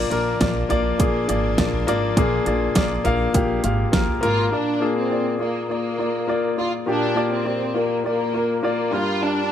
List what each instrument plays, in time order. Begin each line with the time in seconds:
Already playing: grand piano A#2 A#3 F4 D5, string section F3 A#3 D4
0.10 upright bass A#1, grand piano A#3 F4 A#4, closed hi-hat
0.40 upright bass A#1, grand piano A#3 F4 D5, kick, snare, closed hi-hat
0.69 upright bass A#1, grand piano A#3 F4 D5, closed hi-hat, floor tom
0.98 upright bass A#1, grand piano A#3 F4 G#4, kick, closed hi-hat
1.28 upright bass G#1, grand piano A#3 F4 D5, closed hi-hat
1.57 upright bass A#1, grand piano A#3 F4 D5, kick, snare, closed hi-hat
1.73 floor tom
1.87 upright bass G#1, grand piano A#3 F4 D5, closed hi-hat
2.17 upright bass A#1, grand piano A#2 A#3 F4 G#4, kick, closed hi-hat
2.46 upright bass A#1, grand piano A#3 F4 D5, closed hi-hat
2.75 upright bass A#1, grand piano A#3 F4 D5, kick, snare, closed hi-hat
3.04 upright bass A#1, grand piano A#3 F4 F5, closed hi-hat, floor tom
3.33 upright bass A#1, grand piano A#3 F4 G4, kick, closed hi-hat
3.63 upright bass G#1, grand piano A#3 F4 F5, closed hi-hat
3.92 upright bass A#1, grand piano A#3 F4 A#4, kick, snare, closed hi-hat
4.08 floor tom
4.21 upright bass G#1, grand piano A#3 F4 A#4, violin section F4, closed hi-hat
4.51 grand piano A#2 A#3 F4 D5, violin section D4
4.80 grand piano A#3 F4 G#4
4.98 violin section C4
5.10 grand piano A#3 F4 D5
5.39 grand piano A#3 F4 D5, violin section A#3
5.69 grand piano A#3 F4 D5, violin section A#3
5.98 grand piano A#3 F4 D5
6.27 grand piano A#3 F4 D5
6.57 grand piano A#3 F4 D5, violin section F4
6.86 grand piano A#2 A#3 F4 G4, violin section D4
7.15 grand piano A#3 F4 D5
7.32 violin section C4
7.44 grand piano A#3 F4 D5
7.74 grand piano A#3 F4 D5, violin section A#3
8.04 grand piano A#3 F4 D5, violin section A#3
8.34 grand piano A#3 F4 A#4
8.63 grand piano A#3 F4 D5, violin section A#3
8.92 grand piano G2 G3 F4 A#4, violin section F4
9.24 violin section D4